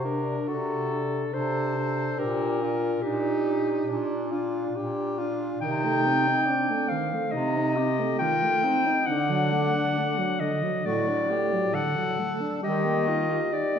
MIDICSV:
0, 0, Header, 1, 5, 480
1, 0, Start_track
1, 0, Tempo, 854701
1, 1228, Time_signature, 4, 2, 24, 8
1, 4113, Tempo, 886263
1, 7616, End_track
2, 0, Start_track
2, 0, Title_t, "Clarinet"
2, 0, Program_c, 0, 71
2, 27, Note_on_c, 0, 70, 57
2, 271, Note_on_c, 0, 69, 66
2, 279, Note_off_c, 0, 70, 0
2, 751, Note_on_c, 0, 72, 72
2, 760, Note_off_c, 0, 69, 0
2, 1228, Note_on_c, 0, 70, 73
2, 1236, Note_off_c, 0, 72, 0
2, 1695, Note_on_c, 0, 67, 71
2, 1703, Note_off_c, 0, 70, 0
2, 2422, Note_off_c, 0, 67, 0
2, 3150, Note_on_c, 0, 79, 101
2, 3867, Note_on_c, 0, 77, 75
2, 3875, Note_off_c, 0, 79, 0
2, 4108, Note_on_c, 0, 75, 81
2, 4116, Note_off_c, 0, 77, 0
2, 4579, Note_off_c, 0, 75, 0
2, 4582, Note_on_c, 0, 79, 94
2, 5052, Note_on_c, 0, 78, 78
2, 5060, Note_off_c, 0, 79, 0
2, 5778, Note_on_c, 0, 75, 75
2, 5786, Note_off_c, 0, 78, 0
2, 6024, Note_on_c, 0, 74, 75
2, 6032, Note_off_c, 0, 75, 0
2, 6507, Note_on_c, 0, 78, 82
2, 6515, Note_off_c, 0, 74, 0
2, 6840, Note_off_c, 0, 78, 0
2, 6993, Note_on_c, 0, 75, 84
2, 7475, Note_on_c, 0, 74, 77
2, 7483, Note_off_c, 0, 75, 0
2, 7616, Note_off_c, 0, 74, 0
2, 7616, End_track
3, 0, Start_track
3, 0, Title_t, "Tenor saxophone"
3, 0, Program_c, 1, 66
3, 29, Note_on_c, 1, 62, 48
3, 271, Note_on_c, 1, 66, 53
3, 279, Note_off_c, 1, 62, 0
3, 603, Note_off_c, 1, 66, 0
3, 751, Note_on_c, 1, 69, 58
3, 1229, Note_on_c, 1, 67, 55
3, 1238, Note_off_c, 1, 69, 0
3, 1466, Note_on_c, 1, 65, 51
3, 1475, Note_off_c, 1, 67, 0
3, 1702, Note_off_c, 1, 65, 0
3, 1706, Note_on_c, 1, 63, 57
3, 2185, Note_on_c, 1, 62, 57
3, 2194, Note_off_c, 1, 63, 0
3, 2423, Note_on_c, 1, 65, 58
3, 2432, Note_off_c, 1, 62, 0
3, 2671, Note_on_c, 1, 67, 54
3, 2679, Note_off_c, 1, 65, 0
3, 2910, Note_on_c, 1, 65, 60
3, 2918, Note_off_c, 1, 67, 0
3, 3146, Note_off_c, 1, 65, 0
3, 3149, Note_on_c, 1, 63, 64
3, 3628, Note_on_c, 1, 62, 57
3, 3637, Note_off_c, 1, 63, 0
3, 3867, Note_on_c, 1, 60, 56
3, 3876, Note_off_c, 1, 62, 0
3, 4114, Note_on_c, 1, 63, 58
3, 4122, Note_off_c, 1, 60, 0
3, 4350, Note_on_c, 1, 67, 66
3, 4358, Note_off_c, 1, 63, 0
3, 4590, Note_on_c, 1, 65, 55
3, 4598, Note_off_c, 1, 67, 0
3, 4820, Note_on_c, 1, 63, 57
3, 4828, Note_off_c, 1, 65, 0
3, 4989, Note_off_c, 1, 63, 0
3, 5060, Note_on_c, 1, 62, 79
3, 5859, Note_off_c, 1, 62, 0
3, 6027, Note_on_c, 1, 66, 59
3, 6262, Note_on_c, 1, 67, 68
3, 6270, Note_off_c, 1, 66, 0
3, 6501, Note_on_c, 1, 69, 71
3, 6509, Note_off_c, 1, 67, 0
3, 6983, Note_off_c, 1, 69, 0
3, 6986, Note_on_c, 1, 67, 69
3, 7228, Note_on_c, 1, 65, 58
3, 7236, Note_off_c, 1, 67, 0
3, 7468, Note_off_c, 1, 65, 0
3, 7471, Note_on_c, 1, 67, 59
3, 7616, Note_off_c, 1, 67, 0
3, 7616, End_track
4, 0, Start_track
4, 0, Title_t, "Alto saxophone"
4, 0, Program_c, 2, 65
4, 28, Note_on_c, 2, 62, 44
4, 265, Note_off_c, 2, 62, 0
4, 270, Note_on_c, 2, 62, 42
4, 507, Note_off_c, 2, 62, 0
4, 510, Note_on_c, 2, 62, 44
4, 748, Note_off_c, 2, 62, 0
4, 750, Note_on_c, 2, 62, 49
4, 985, Note_off_c, 2, 62, 0
4, 989, Note_on_c, 2, 62, 45
4, 1221, Note_off_c, 2, 62, 0
4, 1226, Note_on_c, 2, 62, 53
4, 1458, Note_off_c, 2, 62, 0
4, 1462, Note_on_c, 2, 62, 46
4, 1696, Note_off_c, 2, 62, 0
4, 1699, Note_on_c, 2, 62, 47
4, 1935, Note_off_c, 2, 62, 0
4, 1943, Note_on_c, 2, 62, 51
4, 2179, Note_off_c, 2, 62, 0
4, 2184, Note_on_c, 2, 62, 52
4, 2421, Note_off_c, 2, 62, 0
4, 2427, Note_on_c, 2, 62, 49
4, 2664, Note_off_c, 2, 62, 0
4, 2673, Note_on_c, 2, 62, 51
4, 2907, Note_off_c, 2, 62, 0
4, 2919, Note_on_c, 2, 62, 52
4, 3150, Note_off_c, 2, 62, 0
4, 3155, Note_on_c, 2, 51, 59
4, 3281, Note_on_c, 2, 57, 55
4, 3290, Note_off_c, 2, 51, 0
4, 3404, Note_on_c, 2, 60, 52
4, 3413, Note_off_c, 2, 57, 0
4, 3524, Note_on_c, 2, 63, 52
4, 3532, Note_off_c, 2, 60, 0
4, 3649, Note_on_c, 2, 60, 53
4, 3657, Note_off_c, 2, 63, 0
4, 3766, Note_on_c, 2, 57, 52
4, 3775, Note_off_c, 2, 60, 0
4, 3886, Note_on_c, 2, 51, 56
4, 3895, Note_off_c, 2, 57, 0
4, 4008, Note_on_c, 2, 57, 49
4, 4016, Note_off_c, 2, 51, 0
4, 4123, Note_off_c, 2, 57, 0
4, 4133, Note_on_c, 2, 60, 52
4, 4248, Note_on_c, 2, 63, 53
4, 4256, Note_off_c, 2, 60, 0
4, 4361, Note_on_c, 2, 60, 54
4, 4370, Note_off_c, 2, 63, 0
4, 4477, Note_on_c, 2, 57, 54
4, 4485, Note_off_c, 2, 60, 0
4, 4593, Note_on_c, 2, 51, 59
4, 4601, Note_off_c, 2, 57, 0
4, 4714, Note_on_c, 2, 57, 54
4, 4722, Note_off_c, 2, 51, 0
4, 4827, Note_on_c, 2, 60, 56
4, 4835, Note_off_c, 2, 57, 0
4, 4946, Note_on_c, 2, 63, 57
4, 4954, Note_off_c, 2, 60, 0
4, 5064, Note_off_c, 2, 63, 0
4, 5067, Note_on_c, 2, 50, 58
4, 5184, Note_on_c, 2, 54, 55
4, 5192, Note_off_c, 2, 50, 0
4, 5301, Note_on_c, 2, 57, 52
4, 5309, Note_off_c, 2, 54, 0
4, 5428, Note_on_c, 2, 62, 50
4, 5436, Note_off_c, 2, 57, 0
4, 5550, Note_on_c, 2, 57, 54
4, 5558, Note_off_c, 2, 62, 0
4, 5660, Note_on_c, 2, 54, 53
4, 5668, Note_off_c, 2, 57, 0
4, 5783, Note_on_c, 2, 50, 56
4, 5791, Note_off_c, 2, 54, 0
4, 5907, Note_on_c, 2, 54, 54
4, 5915, Note_off_c, 2, 50, 0
4, 6022, Note_off_c, 2, 54, 0
4, 6025, Note_on_c, 2, 57, 55
4, 6148, Note_on_c, 2, 62, 52
4, 6156, Note_off_c, 2, 57, 0
4, 6268, Note_on_c, 2, 57, 52
4, 6276, Note_off_c, 2, 62, 0
4, 6391, Note_on_c, 2, 54, 50
4, 6400, Note_off_c, 2, 57, 0
4, 6503, Note_on_c, 2, 50, 56
4, 6512, Note_off_c, 2, 54, 0
4, 6626, Note_on_c, 2, 54, 51
4, 6634, Note_off_c, 2, 50, 0
4, 6749, Note_on_c, 2, 57, 51
4, 6758, Note_off_c, 2, 54, 0
4, 6868, Note_on_c, 2, 62, 54
4, 6876, Note_off_c, 2, 57, 0
4, 6983, Note_off_c, 2, 62, 0
4, 6987, Note_on_c, 2, 55, 59
4, 7108, Note_on_c, 2, 58, 52
4, 7116, Note_off_c, 2, 55, 0
4, 7231, Note_on_c, 2, 63, 47
4, 7239, Note_off_c, 2, 58, 0
4, 7353, Note_on_c, 2, 67, 47
4, 7361, Note_off_c, 2, 63, 0
4, 7468, Note_on_c, 2, 63, 50
4, 7477, Note_off_c, 2, 67, 0
4, 7598, Note_on_c, 2, 58, 47
4, 7606, Note_off_c, 2, 63, 0
4, 7616, Note_off_c, 2, 58, 0
4, 7616, End_track
5, 0, Start_track
5, 0, Title_t, "Bass clarinet"
5, 0, Program_c, 3, 71
5, 0, Note_on_c, 3, 48, 45
5, 215, Note_off_c, 3, 48, 0
5, 272, Note_on_c, 3, 48, 54
5, 697, Note_off_c, 3, 48, 0
5, 752, Note_on_c, 3, 48, 53
5, 1171, Note_off_c, 3, 48, 0
5, 1224, Note_on_c, 3, 46, 61
5, 1643, Note_off_c, 3, 46, 0
5, 1703, Note_on_c, 3, 46, 57
5, 2126, Note_off_c, 3, 46, 0
5, 2187, Note_on_c, 3, 46, 60
5, 2613, Note_off_c, 3, 46, 0
5, 2671, Note_on_c, 3, 46, 58
5, 3095, Note_off_c, 3, 46, 0
5, 3154, Note_on_c, 3, 48, 67
5, 3550, Note_off_c, 3, 48, 0
5, 4114, Note_on_c, 3, 48, 63
5, 4509, Note_off_c, 3, 48, 0
5, 5063, Note_on_c, 3, 50, 71
5, 5464, Note_off_c, 3, 50, 0
5, 6028, Note_on_c, 3, 45, 61
5, 6429, Note_off_c, 3, 45, 0
5, 6990, Note_on_c, 3, 51, 66
5, 7393, Note_off_c, 3, 51, 0
5, 7616, End_track
0, 0, End_of_file